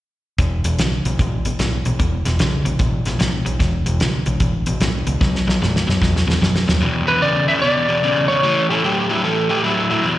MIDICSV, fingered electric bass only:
0, 0, Header, 1, 2, 480
1, 0, Start_track
1, 0, Tempo, 402145
1, 464, Time_signature, 4, 2, 24, 8
1, 12156, End_track
2, 0, Start_track
2, 0, Title_t, "Fingered electric bass"
2, 0, Program_c, 0, 33
2, 461, Note_on_c, 0, 28, 78
2, 731, Note_off_c, 0, 28, 0
2, 770, Note_on_c, 0, 28, 60
2, 919, Note_off_c, 0, 28, 0
2, 941, Note_on_c, 0, 35, 77
2, 1211, Note_off_c, 0, 35, 0
2, 1247, Note_on_c, 0, 35, 67
2, 1398, Note_off_c, 0, 35, 0
2, 1427, Note_on_c, 0, 33, 69
2, 1695, Note_off_c, 0, 33, 0
2, 1732, Note_on_c, 0, 33, 69
2, 1881, Note_off_c, 0, 33, 0
2, 1906, Note_on_c, 0, 35, 77
2, 2174, Note_off_c, 0, 35, 0
2, 2222, Note_on_c, 0, 35, 66
2, 2367, Note_off_c, 0, 35, 0
2, 2388, Note_on_c, 0, 28, 80
2, 2655, Note_off_c, 0, 28, 0
2, 2704, Note_on_c, 0, 28, 68
2, 2848, Note_off_c, 0, 28, 0
2, 2864, Note_on_c, 0, 35, 79
2, 3133, Note_off_c, 0, 35, 0
2, 3184, Note_on_c, 0, 35, 67
2, 3328, Note_off_c, 0, 35, 0
2, 3337, Note_on_c, 0, 33, 79
2, 3609, Note_off_c, 0, 33, 0
2, 3651, Note_on_c, 0, 33, 65
2, 3801, Note_off_c, 0, 33, 0
2, 3833, Note_on_c, 0, 35, 72
2, 4099, Note_off_c, 0, 35, 0
2, 4140, Note_on_c, 0, 35, 74
2, 4285, Note_off_c, 0, 35, 0
2, 4300, Note_on_c, 0, 28, 73
2, 4571, Note_off_c, 0, 28, 0
2, 4617, Note_on_c, 0, 28, 64
2, 4764, Note_off_c, 0, 28, 0
2, 4790, Note_on_c, 0, 35, 77
2, 5057, Note_off_c, 0, 35, 0
2, 5094, Note_on_c, 0, 35, 65
2, 5242, Note_off_c, 0, 35, 0
2, 5257, Note_on_c, 0, 33, 69
2, 5530, Note_off_c, 0, 33, 0
2, 5573, Note_on_c, 0, 33, 62
2, 5722, Note_off_c, 0, 33, 0
2, 5735, Note_on_c, 0, 35, 72
2, 6009, Note_off_c, 0, 35, 0
2, 6053, Note_on_c, 0, 37, 77
2, 6202, Note_off_c, 0, 37, 0
2, 6217, Note_on_c, 0, 35, 77
2, 6490, Note_off_c, 0, 35, 0
2, 6530, Note_on_c, 0, 35, 68
2, 6680, Note_off_c, 0, 35, 0
2, 6712, Note_on_c, 0, 42, 77
2, 6978, Note_off_c, 0, 42, 0
2, 7021, Note_on_c, 0, 42, 70
2, 7167, Note_off_c, 0, 42, 0
2, 7177, Note_on_c, 0, 40, 78
2, 7450, Note_off_c, 0, 40, 0
2, 7487, Note_on_c, 0, 40, 65
2, 7639, Note_off_c, 0, 40, 0
2, 7663, Note_on_c, 0, 42, 67
2, 7933, Note_off_c, 0, 42, 0
2, 7976, Note_on_c, 0, 39, 69
2, 8123, Note_off_c, 0, 39, 0
2, 12156, End_track
0, 0, End_of_file